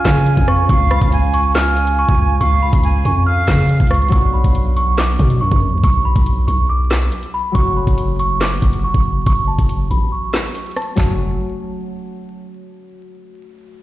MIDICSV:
0, 0, Header, 1, 7, 480
1, 0, Start_track
1, 0, Key_signature, 3, "minor"
1, 0, Tempo, 428571
1, 777, Time_signature, 4, 2, 24, 8
1, 15486, End_track
2, 0, Start_track
2, 0, Title_t, "Celesta"
2, 0, Program_c, 0, 8
2, 0, Note_on_c, 0, 89, 81
2, 496, Note_off_c, 0, 89, 0
2, 539, Note_on_c, 0, 85, 91
2, 753, Note_off_c, 0, 85, 0
2, 781, Note_on_c, 0, 85, 92
2, 995, Note_off_c, 0, 85, 0
2, 1016, Note_on_c, 0, 83, 71
2, 1468, Note_off_c, 0, 83, 0
2, 1499, Note_on_c, 0, 85, 93
2, 1713, Note_off_c, 0, 85, 0
2, 1737, Note_on_c, 0, 89, 86
2, 2188, Note_off_c, 0, 89, 0
2, 2226, Note_on_c, 0, 85, 86
2, 2673, Note_off_c, 0, 85, 0
2, 2698, Note_on_c, 0, 85, 110
2, 2913, Note_off_c, 0, 85, 0
2, 2939, Note_on_c, 0, 83, 82
2, 3389, Note_off_c, 0, 83, 0
2, 3423, Note_on_c, 0, 85, 81
2, 3636, Note_off_c, 0, 85, 0
2, 3656, Note_on_c, 0, 89, 75
2, 4333, Note_off_c, 0, 89, 0
2, 4381, Note_on_c, 0, 85, 84
2, 4595, Note_off_c, 0, 85, 0
2, 4618, Note_on_c, 0, 85, 93
2, 4833, Note_off_c, 0, 85, 0
2, 4856, Note_on_c, 0, 83, 71
2, 5308, Note_off_c, 0, 83, 0
2, 5337, Note_on_c, 0, 85, 90
2, 5552, Note_off_c, 0, 85, 0
2, 5579, Note_on_c, 0, 86, 90
2, 6029, Note_off_c, 0, 86, 0
2, 6058, Note_on_c, 0, 85, 82
2, 6509, Note_off_c, 0, 85, 0
2, 6538, Note_on_c, 0, 85, 105
2, 6753, Note_off_c, 0, 85, 0
2, 6776, Note_on_c, 0, 83, 82
2, 7228, Note_off_c, 0, 83, 0
2, 7251, Note_on_c, 0, 85, 74
2, 7469, Note_off_c, 0, 85, 0
2, 7497, Note_on_c, 0, 86, 80
2, 8174, Note_off_c, 0, 86, 0
2, 8220, Note_on_c, 0, 83, 83
2, 8434, Note_off_c, 0, 83, 0
2, 8452, Note_on_c, 0, 85, 98
2, 8670, Note_off_c, 0, 85, 0
2, 8699, Note_on_c, 0, 83, 72
2, 9150, Note_off_c, 0, 83, 0
2, 9178, Note_on_c, 0, 85, 91
2, 9393, Note_off_c, 0, 85, 0
2, 9419, Note_on_c, 0, 86, 84
2, 9869, Note_off_c, 0, 86, 0
2, 9902, Note_on_c, 0, 85, 80
2, 10351, Note_off_c, 0, 85, 0
2, 10377, Note_on_c, 0, 85, 105
2, 10592, Note_off_c, 0, 85, 0
2, 10613, Note_on_c, 0, 81, 82
2, 11066, Note_off_c, 0, 81, 0
2, 11095, Note_on_c, 0, 83, 81
2, 11311, Note_off_c, 0, 83, 0
2, 11335, Note_on_c, 0, 85, 78
2, 12013, Note_off_c, 0, 85, 0
2, 12057, Note_on_c, 0, 81, 83
2, 12272, Note_off_c, 0, 81, 0
2, 12298, Note_on_c, 0, 81, 82
2, 12521, Note_off_c, 0, 81, 0
2, 15486, End_track
3, 0, Start_track
3, 0, Title_t, "Flute"
3, 0, Program_c, 1, 73
3, 0, Note_on_c, 1, 80, 93
3, 733, Note_off_c, 1, 80, 0
3, 778, Note_on_c, 1, 77, 107
3, 1229, Note_off_c, 1, 77, 0
3, 1257, Note_on_c, 1, 80, 94
3, 1708, Note_off_c, 1, 80, 0
3, 1737, Note_on_c, 1, 80, 94
3, 2652, Note_off_c, 1, 80, 0
3, 2697, Note_on_c, 1, 77, 106
3, 3148, Note_off_c, 1, 77, 0
3, 3177, Note_on_c, 1, 80, 89
3, 3628, Note_off_c, 1, 80, 0
3, 3656, Note_on_c, 1, 77, 105
3, 4572, Note_off_c, 1, 77, 0
3, 15486, End_track
4, 0, Start_track
4, 0, Title_t, "Flute section"
4, 0, Program_c, 2, 73
4, 0, Note_on_c, 2, 61, 89
4, 0, Note_on_c, 2, 65, 82
4, 0, Note_on_c, 2, 77, 99
4, 4572, Note_off_c, 2, 65, 0
4, 4572, Note_off_c, 2, 77, 0
4, 4573, Note_off_c, 2, 61, 0
4, 15486, End_track
5, 0, Start_track
5, 0, Title_t, "Harp"
5, 0, Program_c, 3, 46
5, 4581, Note_on_c, 3, 54, 73
5, 4606, Note_on_c, 3, 59, 66
5, 4631, Note_on_c, 3, 62, 62
5, 4657, Note_on_c, 3, 66, 67
5, 8405, Note_off_c, 3, 54, 0
5, 8407, Note_off_c, 3, 59, 0
5, 8419, Note_off_c, 3, 62, 0
5, 8419, Note_on_c, 3, 54, 67
5, 8432, Note_off_c, 3, 66, 0
5, 8444, Note_on_c, 3, 57, 62
5, 8470, Note_on_c, 3, 61, 58
5, 8495, Note_on_c, 3, 66, 70
5, 12246, Note_off_c, 3, 57, 0
5, 12259, Note_off_c, 3, 61, 0
5, 12266, Note_off_c, 3, 54, 0
5, 12271, Note_off_c, 3, 66, 0
5, 12271, Note_on_c, 3, 54, 87
5, 12288, Note_on_c, 3, 57, 79
5, 12305, Note_on_c, 3, 61, 77
5, 12323, Note_on_c, 3, 66, 92
5, 12520, Note_off_c, 3, 54, 0
5, 12520, Note_off_c, 3, 57, 0
5, 12520, Note_off_c, 3, 61, 0
5, 12520, Note_off_c, 3, 66, 0
5, 15486, End_track
6, 0, Start_track
6, 0, Title_t, "808-style bass"
6, 0, Program_c, 4, 38
6, 56, Note_on_c, 4, 49, 103
6, 402, Note_off_c, 4, 49, 0
6, 417, Note_on_c, 4, 41, 104
6, 763, Note_off_c, 4, 41, 0
6, 777, Note_on_c, 4, 37, 113
6, 1123, Note_off_c, 4, 37, 0
6, 1136, Note_on_c, 4, 37, 105
6, 2292, Note_off_c, 4, 37, 0
6, 2337, Note_on_c, 4, 37, 103
6, 2683, Note_off_c, 4, 37, 0
6, 2696, Note_on_c, 4, 37, 114
6, 3042, Note_off_c, 4, 37, 0
6, 3056, Note_on_c, 4, 37, 105
6, 3402, Note_off_c, 4, 37, 0
6, 3417, Note_on_c, 4, 41, 102
6, 3878, Note_off_c, 4, 41, 0
6, 3896, Note_on_c, 4, 49, 105
6, 4242, Note_off_c, 4, 49, 0
6, 4257, Note_on_c, 4, 37, 103
6, 4603, Note_off_c, 4, 37, 0
6, 4617, Note_on_c, 4, 35, 111
6, 4963, Note_off_c, 4, 35, 0
6, 4976, Note_on_c, 4, 35, 103
6, 5783, Note_off_c, 4, 35, 0
6, 5816, Note_on_c, 4, 47, 103
6, 6057, Note_on_c, 4, 42, 96
6, 6073, Note_off_c, 4, 47, 0
6, 6171, Note_off_c, 4, 42, 0
6, 6177, Note_on_c, 4, 42, 106
6, 6416, Note_on_c, 4, 38, 99
6, 6433, Note_off_c, 4, 42, 0
6, 6531, Note_off_c, 4, 38, 0
6, 6537, Note_on_c, 4, 35, 107
6, 6883, Note_off_c, 4, 35, 0
6, 6896, Note_on_c, 4, 35, 101
6, 7242, Note_off_c, 4, 35, 0
6, 7257, Note_on_c, 4, 35, 107
6, 7948, Note_off_c, 4, 35, 0
6, 8457, Note_on_c, 4, 30, 112
6, 8803, Note_off_c, 4, 30, 0
6, 8817, Note_on_c, 4, 30, 106
6, 9623, Note_off_c, 4, 30, 0
6, 9657, Note_on_c, 4, 30, 107
6, 9897, Note_on_c, 4, 29, 97
6, 9914, Note_off_c, 4, 30, 0
6, 10011, Note_off_c, 4, 29, 0
6, 10017, Note_on_c, 4, 30, 100
6, 10363, Note_off_c, 4, 30, 0
6, 10377, Note_on_c, 4, 30, 110
6, 10723, Note_off_c, 4, 30, 0
6, 10737, Note_on_c, 4, 30, 106
6, 11082, Note_off_c, 4, 30, 0
6, 11097, Note_on_c, 4, 33, 103
6, 11327, Note_off_c, 4, 33, 0
6, 12298, Note_on_c, 4, 30, 112
6, 12744, Note_off_c, 4, 30, 0
6, 15486, End_track
7, 0, Start_track
7, 0, Title_t, "Drums"
7, 56, Note_on_c, 9, 38, 118
7, 57, Note_on_c, 9, 36, 104
7, 67, Note_on_c, 9, 39, 96
7, 168, Note_off_c, 9, 38, 0
7, 169, Note_off_c, 9, 36, 0
7, 179, Note_off_c, 9, 39, 0
7, 295, Note_on_c, 9, 42, 88
7, 407, Note_off_c, 9, 42, 0
7, 417, Note_on_c, 9, 36, 100
7, 417, Note_on_c, 9, 42, 65
7, 529, Note_off_c, 9, 36, 0
7, 529, Note_off_c, 9, 42, 0
7, 536, Note_on_c, 9, 37, 96
7, 648, Note_off_c, 9, 37, 0
7, 777, Note_on_c, 9, 36, 127
7, 778, Note_on_c, 9, 42, 90
7, 889, Note_off_c, 9, 36, 0
7, 890, Note_off_c, 9, 42, 0
7, 1017, Note_on_c, 9, 37, 100
7, 1129, Note_off_c, 9, 37, 0
7, 1136, Note_on_c, 9, 36, 95
7, 1139, Note_on_c, 9, 42, 84
7, 1248, Note_off_c, 9, 36, 0
7, 1251, Note_off_c, 9, 42, 0
7, 1254, Note_on_c, 9, 42, 78
7, 1366, Note_off_c, 9, 42, 0
7, 1496, Note_on_c, 9, 42, 80
7, 1608, Note_off_c, 9, 42, 0
7, 1737, Note_on_c, 9, 38, 122
7, 1738, Note_on_c, 9, 42, 82
7, 1747, Note_on_c, 9, 39, 98
7, 1849, Note_off_c, 9, 38, 0
7, 1850, Note_off_c, 9, 42, 0
7, 1859, Note_off_c, 9, 39, 0
7, 1976, Note_on_c, 9, 42, 82
7, 2088, Note_off_c, 9, 42, 0
7, 2096, Note_on_c, 9, 42, 77
7, 2208, Note_off_c, 9, 42, 0
7, 2337, Note_on_c, 9, 36, 103
7, 2449, Note_off_c, 9, 36, 0
7, 2697, Note_on_c, 9, 42, 93
7, 2809, Note_off_c, 9, 42, 0
7, 3056, Note_on_c, 9, 36, 98
7, 3058, Note_on_c, 9, 42, 81
7, 3168, Note_off_c, 9, 36, 0
7, 3170, Note_off_c, 9, 42, 0
7, 3174, Note_on_c, 9, 42, 83
7, 3286, Note_off_c, 9, 42, 0
7, 3416, Note_on_c, 9, 42, 79
7, 3528, Note_off_c, 9, 42, 0
7, 3895, Note_on_c, 9, 38, 121
7, 3896, Note_on_c, 9, 36, 107
7, 3906, Note_on_c, 9, 39, 92
7, 4007, Note_off_c, 9, 38, 0
7, 4008, Note_off_c, 9, 36, 0
7, 4018, Note_off_c, 9, 39, 0
7, 4134, Note_on_c, 9, 42, 86
7, 4246, Note_off_c, 9, 42, 0
7, 4257, Note_on_c, 9, 36, 101
7, 4257, Note_on_c, 9, 42, 66
7, 4337, Note_off_c, 9, 42, 0
7, 4337, Note_on_c, 9, 42, 59
7, 4369, Note_off_c, 9, 36, 0
7, 4376, Note_on_c, 9, 37, 97
7, 4417, Note_off_c, 9, 42, 0
7, 4417, Note_on_c, 9, 42, 54
7, 4488, Note_off_c, 9, 37, 0
7, 4497, Note_off_c, 9, 42, 0
7, 4497, Note_on_c, 9, 42, 49
7, 4577, Note_off_c, 9, 42, 0
7, 4577, Note_on_c, 9, 42, 43
7, 4617, Note_off_c, 9, 42, 0
7, 4617, Note_on_c, 9, 36, 127
7, 4617, Note_on_c, 9, 42, 88
7, 4657, Note_off_c, 9, 42, 0
7, 4657, Note_on_c, 9, 42, 38
7, 4729, Note_off_c, 9, 36, 0
7, 4769, Note_off_c, 9, 42, 0
7, 4976, Note_on_c, 9, 36, 96
7, 4979, Note_on_c, 9, 42, 80
7, 5088, Note_off_c, 9, 36, 0
7, 5091, Note_off_c, 9, 42, 0
7, 5095, Note_on_c, 9, 42, 79
7, 5207, Note_off_c, 9, 42, 0
7, 5337, Note_on_c, 9, 42, 77
7, 5449, Note_off_c, 9, 42, 0
7, 5577, Note_on_c, 9, 38, 119
7, 5578, Note_on_c, 9, 42, 78
7, 5587, Note_on_c, 9, 39, 96
7, 5689, Note_off_c, 9, 38, 0
7, 5690, Note_off_c, 9, 42, 0
7, 5699, Note_off_c, 9, 39, 0
7, 5816, Note_on_c, 9, 36, 103
7, 5816, Note_on_c, 9, 42, 82
7, 5928, Note_off_c, 9, 36, 0
7, 5928, Note_off_c, 9, 42, 0
7, 5936, Note_on_c, 9, 42, 73
7, 6048, Note_off_c, 9, 42, 0
7, 6177, Note_on_c, 9, 36, 103
7, 6289, Note_off_c, 9, 36, 0
7, 6537, Note_on_c, 9, 36, 127
7, 6537, Note_on_c, 9, 42, 90
7, 6649, Note_off_c, 9, 36, 0
7, 6649, Note_off_c, 9, 42, 0
7, 6896, Note_on_c, 9, 36, 96
7, 6899, Note_on_c, 9, 42, 81
7, 7008, Note_off_c, 9, 36, 0
7, 7011, Note_off_c, 9, 42, 0
7, 7014, Note_on_c, 9, 42, 78
7, 7126, Note_off_c, 9, 42, 0
7, 7256, Note_on_c, 9, 42, 76
7, 7368, Note_off_c, 9, 42, 0
7, 7736, Note_on_c, 9, 38, 116
7, 7746, Note_on_c, 9, 39, 92
7, 7848, Note_off_c, 9, 38, 0
7, 7858, Note_off_c, 9, 39, 0
7, 7975, Note_on_c, 9, 42, 85
7, 8087, Note_off_c, 9, 42, 0
7, 8097, Note_on_c, 9, 42, 62
7, 8209, Note_off_c, 9, 42, 0
7, 8457, Note_on_c, 9, 36, 123
7, 8457, Note_on_c, 9, 42, 90
7, 8569, Note_off_c, 9, 36, 0
7, 8569, Note_off_c, 9, 42, 0
7, 8817, Note_on_c, 9, 36, 93
7, 8819, Note_on_c, 9, 42, 81
7, 8929, Note_off_c, 9, 36, 0
7, 8931, Note_off_c, 9, 42, 0
7, 8934, Note_on_c, 9, 42, 79
7, 9046, Note_off_c, 9, 42, 0
7, 9177, Note_on_c, 9, 42, 76
7, 9289, Note_off_c, 9, 42, 0
7, 9417, Note_on_c, 9, 38, 117
7, 9418, Note_on_c, 9, 42, 80
7, 9427, Note_on_c, 9, 39, 95
7, 9529, Note_off_c, 9, 38, 0
7, 9530, Note_off_c, 9, 42, 0
7, 9539, Note_off_c, 9, 39, 0
7, 9656, Note_on_c, 9, 42, 83
7, 9657, Note_on_c, 9, 36, 102
7, 9768, Note_off_c, 9, 42, 0
7, 9769, Note_off_c, 9, 36, 0
7, 9777, Note_on_c, 9, 42, 74
7, 9889, Note_off_c, 9, 42, 0
7, 10017, Note_on_c, 9, 36, 98
7, 10129, Note_off_c, 9, 36, 0
7, 10377, Note_on_c, 9, 36, 127
7, 10377, Note_on_c, 9, 42, 92
7, 10489, Note_off_c, 9, 36, 0
7, 10489, Note_off_c, 9, 42, 0
7, 10737, Note_on_c, 9, 36, 99
7, 10739, Note_on_c, 9, 42, 84
7, 10849, Note_off_c, 9, 36, 0
7, 10851, Note_off_c, 9, 42, 0
7, 10854, Note_on_c, 9, 42, 79
7, 10966, Note_off_c, 9, 42, 0
7, 11096, Note_on_c, 9, 42, 78
7, 11208, Note_off_c, 9, 42, 0
7, 11576, Note_on_c, 9, 38, 116
7, 11586, Note_on_c, 9, 39, 91
7, 11688, Note_off_c, 9, 38, 0
7, 11698, Note_off_c, 9, 39, 0
7, 11815, Note_on_c, 9, 42, 85
7, 11927, Note_off_c, 9, 42, 0
7, 11937, Note_on_c, 9, 42, 40
7, 11998, Note_off_c, 9, 42, 0
7, 11998, Note_on_c, 9, 42, 47
7, 12056, Note_on_c, 9, 37, 93
7, 12057, Note_off_c, 9, 42, 0
7, 12057, Note_on_c, 9, 42, 57
7, 12117, Note_off_c, 9, 42, 0
7, 12117, Note_on_c, 9, 42, 62
7, 12168, Note_off_c, 9, 37, 0
7, 12229, Note_off_c, 9, 42, 0
7, 12297, Note_on_c, 9, 36, 114
7, 12298, Note_on_c, 9, 39, 96
7, 12298, Note_on_c, 9, 43, 108
7, 12409, Note_off_c, 9, 36, 0
7, 12410, Note_off_c, 9, 39, 0
7, 12410, Note_off_c, 9, 43, 0
7, 15486, End_track
0, 0, End_of_file